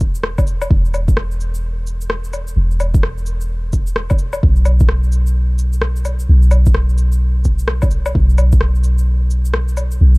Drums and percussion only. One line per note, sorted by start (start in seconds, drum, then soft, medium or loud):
0.00 kick medium
0.00 cabasa medium
0.15 shaker medium
0.24 cross-stick loud
0.38 kick loud
0.38 low woodblock medium
0.38 shaker soft
0.47 cabasa medium
0.62 low woodblock medium
0.62 shaker medium
0.71 kick loud
0.85 shaker soft
0.94 cabasa medium
0.94 low woodblock soft
1.08 kick loud
1.08 shaker medium
1.17 cross-stick loud
1.31 shaker soft
1.41 cabasa medium
1.55 shaker medium
1.87 cabasa medium
2.01 shaker medium
2.10 cross-stick loud
2.24 shaker soft
2.33 cabasa medium
2.33 low woodblock soft
2.48 shaker medium
2.71 shaker soft
2.80 cabasa medium
2.80 low woodblock medium
2.94 kick loud
2.94 shaker medium
3.03 cross-stick loud
3.18 shaker soft
3.26 cabasa medium
3.41 shaker medium
3.73 kick medium
3.73 cabasa medium
3.87 shaker medium
3.96 cross-stick loud
4.10 kick loud
4.10 low woodblock soft
4.10 shaker soft
4.19 cabasa medium
4.33 low woodblock medium
4.33 shaker medium
4.43 kick loud
4.56 shaker soft
4.65 cabasa medium
4.65 low woodblock medium
4.80 kick loud
4.80 shaker medium
4.89 cross-stick loud
5.03 shaker soft
5.12 cabasa medium
5.27 shaker medium
5.59 cabasa medium
5.73 shaker medium
5.82 cross-stick loud
5.96 shaker soft
6.05 cabasa medium
6.05 low woodblock soft
6.20 shaker medium
6.42 shaker soft
6.51 cabasa medium
6.51 low woodblock medium
6.66 kick loud
6.66 shaker medium
6.74 cross-stick loud
6.89 shaker soft
6.98 cabasa medium
7.12 shaker medium
7.45 kick medium
7.45 cabasa medium
7.59 shaker medium
7.68 cross-stick loud
7.82 kick loud
7.82 low woodblock medium
7.82 shaker soft
7.91 cabasa medium
8.06 low woodblock medium
8.06 shaker medium
8.15 kick loud
8.29 shaker soft
8.38 cabasa medium
8.38 low woodblock medium
8.52 kick loud
8.52 shaker medium
8.61 cross-stick loud
8.75 shaker soft
8.84 cabasa medium
8.98 shaker medium
9.31 cabasa medium
9.45 shaker medium
9.54 cross-stick loud
9.68 shaker soft
9.77 cabasa medium
9.77 low woodblock soft
9.91 shaker medium
10.15 shaker soft